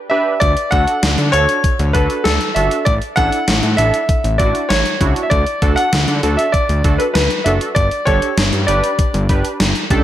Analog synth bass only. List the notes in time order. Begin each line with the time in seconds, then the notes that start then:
0.42 D2
0.72 D2
1.03 D2
1.18 D3
1.34 D2
1.79 D2
1.95 D2
2.25 D2
2.56 G1
2.87 A1
3.17 A1
3.48 A1
3.63 A2
3.78 A1
4.24 A1
4.40 A1
4.70 A1
5.01 C#2
5.31 D2
5.62 D2
5.93 D2
6.08 D3
6.23 D2
6.69 D2
6.84 D2
7.15 D2
7.46 F#1
7.76 G1
8.07 G1
8.38 G1
8.53 G2
8.68 G1
9.14 G1
9.29 G1
9.60 G1
9.90 C#2